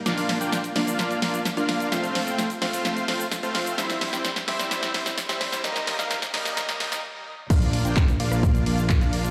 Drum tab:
CC |----------------|----------------|----------------|----------------|
HH |xooxxxoxxxoxxxox|xxoxxxooxxoxxxox|xooxxxoxxxoxxxox|xxoxxxooxxox----|
SH |xx-xxx-xxx-xxx-x|xx-xxx-xxx-xxx-x|xx-xxx-xxx-xxx-x|xx-xxx-xxx-x----|
CP |----------------|----------------|----------------|----------------|
SD |o-o-o-o-o-o-o-o-|o-o-o-o-o-o-o-o-|oooooooooooooooo|oooooooooooo----|
BD |----------------|----------------|----------------|----------------|

CC |x---------------|
HH |xooxxxo-xxoxxxox|
SH |xx-xxx-xxx-xxx-x|
CP |----x-------x---|
SD |-------r--------|
BD |o---o---o---o---|